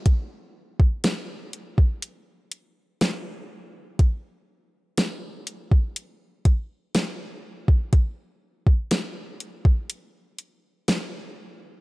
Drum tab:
HH |x---x-x-x-x-x---|x---x-x-x-x-x---|x---x-x-x-x-x---|
SD |----o-------o---|----o-------o---|----o-------o---|
BD |o--o---o--------|o------o--o----o|o--o---o--------|